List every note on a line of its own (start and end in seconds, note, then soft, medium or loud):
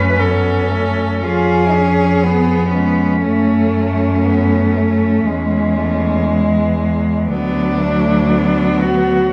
0.00 1.25 F#2 soft
0.00 0.20 A3 soft
0.00 0.13 C#4 soft
0.00 0.21 B4 medium
0.17 0.73 B3 soft
0.17 1.21 C#4 soft
0.17 1.25 A4 soft
0.72 1.23 A3 soft
1.23 3.26 F2 soft
1.23 2.26 C#4 soft
1.23 1.76 F4 soft
1.23 2.74 G#4 soft
1.75 2.25 C#4 soft
2.24 2.76 B3 soft
2.24 3.24 B3 soft
2.75 3.23 G#3 soft
2.75 6.25 C#4 soft
3.23 5.27 F#2 soft
3.23 4.27 A3 soft
3.23 5.27 A3 soft
4.25 4.78 B3 soft
4.77 5.30 A3 soft
5.25 7.30 E2 soft
5.25 7.31 G#3 soft
5.25 5.79 G#3 soft
5.78 6.28 A3 soft
6.29 6.78 G#3 soft
6.78 7.28 G#3 soft
7.29 9.33 D2 soft
7.29 9.31 F#3 soft
7.29 7.81 B3 soft
7.29 8.81 D4 medium
7.80 8.32 A3 soft
8.30 9.31 B3 soft
8.80 9.33 F#4 medium